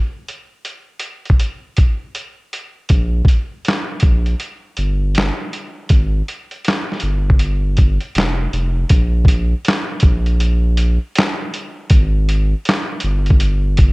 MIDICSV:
0, 0, Header, 1, 3, 480
1, 0, Start_track
1, 0, Tempo, 750000
1, 1859, Time_signature, 4, 2, 24, 8
1, 8913, End_track
2, 0, Start_track
2, 0, Title_t, "Sub bass"
2, 0, Program_c, 0, 38
2, 1856, Note_on_c, 0, 34, 105
2, 2062, Note_off_c, 0, 34, 0
2, 2579, Note_on_c, 0, 34, 87
2, 2783, Note_off_c, 0, 34, 0
2, 3060, Note_on_c, 0, 31, 93
2, 3397, Note_off_c, 0, 31, 0
2, 3777, Note_on_c, 0, 32, 100
2, 3982, Note_off_c, 0, 32, 0
2, 4498, Note_on_c, 0, 31, 96
2, 5110, Note_off_c, 0, 31, 0
2, 5219, Note_on_c, 0, 29, 85
2, 5423, Note_off_c, 0, 29, 0
2, 5458, Note_on_c, 0, 29, 97
2, 5663, Note_off_c, 0, 29, 0
2, 5698, Note_on_c, 0, 34, 109
2, 6107, Note_off_c, 0, 34, 0
2, 6418, Note_on_c, 0, 34, 105
2, 7030, Note_off_c, 0, 34, 0
2, 7619, Note_on_c, 0, 32, 113
2, 8028, Note_off_c, 0, 32, 0
2, 8343, Note_on_c, 0, 31, 93
2, 8913, Note_off_c, 0, 31, 0
2, 8913, End_track
3, 0, Start_track
3, 0, Title_t, "Drums"
3, 182, Note_on_c, 9, 42, 60
3, 246, Note_off_c, 9, 42, 0
3, 415, Note_on_c, 9, 42, 65
3, 479, Note_off_c, 9, 42, 0
3, 637, Note_on_c, 9, 42, 72
3, 701, Note_off_c, 9, 42, 0
3, 803, Note_on_c, 9, 42, 31
3, 831, Note_on_c, 9, 36, 75
3, 867, Note_off_c, 9, 42, 0
3, 893, Note_on_c, 9, 42, 71
3, 895, Note_off_c, 9, 36, 0
3, 957, Note_off_c, 9, 42, 0
3, 1130, Note_on_c, 9, 42, 67
3, 1140, Note_on_c, 9, 36, 79
3, 1194, Note_off_c, 9, 42, 0
3, 1204, Note_off_c, 9, 36, 0
3, 1375, Note_on_c, 9, 42, 75
3, 1439, Note_off_c, 9, 42, 0
3, 1619, Note_on_c, 9, 42, 63
3, 1683, Note_off_c, 9, 42, 0
3, 1849, Note_on_c, 9, 42, 78
3, 1856, Note_on_c, 9, 36, 94
3, 1913, Note_off_c, 9, 42, 0
3, 1920, Note_off_c, 9, 36, 0
3, 2079, Note_on_c, 9, 36, 91
3, 2101, Note_on_c, 9, 42, 59
3, 2143, Note_off_c, 9, 36, 0
3, 2165, Note_off_c, 9, 42, 0
3, 2335, Note_on_c, 9, 42, 65
3, 2358, Note_on_c, 9, 38, 91
3, 2363, Note_on_c, 9, 39, 75
3, 2399, Note_off_c, 9, 42, 0
3, 2422, Note_off_c, 9, 38, 0
3, 2427, Note_off_c, 9, 39, 0
3, 2559, Note_on_c, 9, 42, 71
3, 2577, Note_on_c, 9, 36, 102
3, 2623, Note_off_c, 9, 42, 0
3, 2641, Note_off_c, 9, 36, 0
3, 2726, Note_on_c, 9, 42, 31
3, 2790, Note_off_c, 9, 42, 0
3, 2814, Note_on_c, 9, 42, 69
3, 2878, Note_off_c, 9, 42, 0
3, 3051, Note_on_c, 9, 42, 67
3, 3115, Note_off_c, 9, 42, 0
3, 3295, Note_on_c, 9, 42, 76
3, 3315, Note_on_c, 9, 38, 108
3, 3320, Note_on_c, 9, 39, 90
3, 3359, Note_off_c, 9, 42, 0
3, 3379, Note_off_c, 9, 38, 0
3, 3384, Note_off_c, 9, 39, 0
3, 3540, Note_on_c, 9, 42, 63
3, 3604, Note_off_c, 9, 42, 0
3, 3771, Note_on_c, 9, 42, 83
3, 3777, Note_on_c, 9, 36, 94
3, 3835, Note_off_c, 9, 42, 0
3, 3841, Note_off_c, 9, 36, 0
3, 4021, Note_on_c, 9, 42, 60
3, 4085, Note_off_c, 9, 42, 0
3, 4167, Note_on_c, 9, 42, 33
3, 4231, Note_off_c, 9, 42, 0
3, 4253, Note_on_c, 9, 42, 64
3, 4276, Note_on_c, 9, 38, 100
3, 4282, Note_on_c, 9, 39, 79
3, 4317, Note_off_c, 9, 42, 0
3, 4340, Note_off_c, 9, 38, 0
3, 4346, Note_off_c, 9, 39, 0
3, 4428, Note_on_c, 9, 38, 30
3, 4479, Note_on_c, 9, 42, 72
3, 4492, Note_off_c, 9, 38, 0
3, 4543, Note_off_c, 9, 42, 0
3, 4671, Note_on_c, 9, 36, 81
3, 4731, Note_on_c, 9, 42, 72
3, 4735, Note_off_c, 9, 36, 0
3, 4795, Note_off_c, 9, 42, 0
3, 4971, Note_on_c, 9, 42, 68
3, 4981, Note_on_c, 9, 36, 75
3, 5035, Note_off_c, 9, 42, 0
3, 5045, Note_off_c, 9, 36, 0
3, 5123, Note_on_c, 9, 42, 33
3, 5187, Note_off_c, 9, 42, 0
3, 5216, Note_on_c, 9, 42, 79
3, 5237, Note_on_c, 9, 38, 104
3, 5242, Note_on_c, 9, 39, 92
3, 5280, Note_off_c, 9, 42, 0
3, 5301, Note_off_c, 9, 38, 0
3, 5306, Note_off_c, 9, 39, 0
3, 5461, Note_on_c, 9, 42, 64
3, 5525, Note_off_c, 9, 42, 0
3, 5692, Note_on_c, 9, 42, 89
3, 5697, Note_on_c, 9, 36, 105
3, 5756, Note_off_c, 9, 42, 0
3, 5761, Note_off_c, 9, 36, 0
3, 5919, Note_on_c, 9, 36, 98
3, 5940, Note_on_c, 9, 42, 69
3, 5983, Note_off_c, 9, 36, 0
3, 6004, Note_off_c, 9, 42, 0
3, 6174, Note_on_c, 9, 42, 73
3, 6197, Note_on_c, 9, 38, 109
3, 6202, Note_on_c, 9, 39, 91
3, 6238, Note_off_c, 9, 42, 0
3, 6261, Note_off_c, 9, 38, 0
3, 6266, Note_off_c, 9, 39, 0
3, 6399, Note_on_c, 9, 42, 79
3, 6418, Note_on_c, 9, 36, 114
3, 6463, Note_off_c, 9, 42, 0
3, 6482, Note_off_c, 9, 36, 0
3, 6567, Note_on_c, 9, 42, 35
3, 6631, Note_off_c, 9, 42, 0
3, 6657, Note_on_c, 9, 42, 80
3, 6721, Note_off_c, 9, 42, 0
3, 6894, Note_on_c, 9, 42, 76
3, 6958, Note_off_c, 9, 42, 0
3, 7139, Note_on_c, 9, 42, 90
3, 7159, Note_on_c, 9, 38, 125
3, 7164, Note_on_c, 9, 39, 106
3, 7203, Note_off_c, 9, 42, 0
3, 7223, Note_off_c, 9, 38, 0
3, 7228, Note_off_c, 9, 39, 0
3, 7384, Note_on_c, 9, 42, 71
3, 7448, Note_off_c, 9, 42, 0
3, 7614, Note_on_c, 9, 42, 88
3, 7619, Note_on_c, 9, 36, 100
3, 7678, Note_off_c, 9, 42, 0
3, 7683, Note_off_c, 9, 36, 0
3, 7864, Note_on_c, 9, 42, 67
3, 7928, Note_off_c, 9, 42, 0
3, 8098, Note_on_c, 9, 42, 69
3, 8121, Note_on_c, 9, 38, 107
3, 8126, Note_on_c, 9, 39, 87
3, 8162, Note_off_c, 9, 42, 0
3, 8185, Note_off_c, 9, 38, 0
3, 8190, Note_off_c, 9, 39, 0
3, 8321, Note_on_c, 9, 42, 79
3, 8385, Note_off_c, 9, 42, 0
3, 8487, Note_on_c, 9, 42, 37
3, 8514, Note_on_c, 9, 36, 89
3, 8551, Note_off_c, 9, 42, 0
3, 8576, Note_on_c, 9, 42, 81
3, 8578, Note_off_c, 9, 36, 0
3, 8640, Note_off_c, 9, 42, 0
3, 8814, Note_on_c, 9, 42, 74
3, 8823, Note_on_c, 9, 36, 81
3, 8878, Note_off_c, 9, 42, 0
3, 8887, Note_off_c, 9, 36, 0
3, 8913, End_track
0, 0, End_of_file